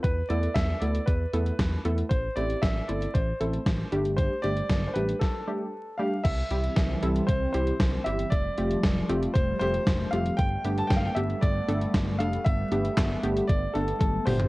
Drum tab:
CC |----------------|----------------|----------------|x---------------|
HH |x-xxx-xxx-xxx-xx|x-xxx-xxx-xxx-xx|x-xxx-xx--------|x-xxx-xxx-xxx-xx|
CP |----------------|----------------|----------------|----------------|
SD |----o-------o---|----o-------o---|----o---o-------|----o-------o---|
T1 |----------------|----------------|----------------|----------------|
T2 |----------------|----------------|----------------|----------------|
FT |----------------|----------------|----------------|----------------|
BD |o---o---o---o---|o---o---o---o---|o---o---o-------|o---o---o---o---|

CC |----------------|----------------|----------------|
HH |x-xxx-xxx-xxx-xx|x-xxx-xxx-xxx-xx|x-xxx-xxx-xxx-ox|
CP |----------------|----------------|----x-----------|
SD |----o-------o---|----o-------o---|----o-----------|
T1 |----------------|----------------|------------o---|
T2 |----------------|----------------|--------------o-|
FT |----------------|----------------|---------------o|
BD |o---o---o---o---|o---o---o---o---|o---o---o---o---|